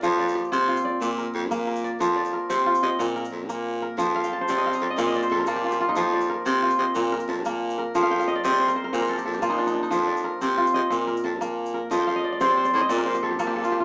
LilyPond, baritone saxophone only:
\new Staff \with { instrumentName = "Baritone saxophone" } { \clef bass \time 12/8 \key f \mixolydian \tempo 4. = 121 f,4. c4 r8 bes,4 f,8 bes,4. | f,4. c4 c16 r16 bes,4 f,8 bes,4. | f,4. c4 f,16 r16 bes,4 f,8 bes,4. | f,4. c4 c16 r16 bes,4 f,8 bes,4. |
f,4. c4 r8 bes,4 f,8 bes,4. | f,4. c4 c16 r16 bes,4 f,8 bes,4. | f,4. c4 a,16 r16 bes,4 f,8 bes,4. | }